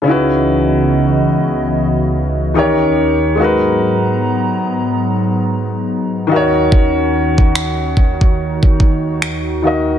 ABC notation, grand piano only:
X:1
M:4/4
L:1/8
Q:"Swing 16ths" 1/4=72
K:C#dor
V:1 name="Grand piano"
[C,CDEFB]6 [D,D=GAc]2 | [G,DFAB]6- [G,DFAB] [D,DFAc]- | [D,DFAc]6- [D,DFAc] [D,DFAd] |]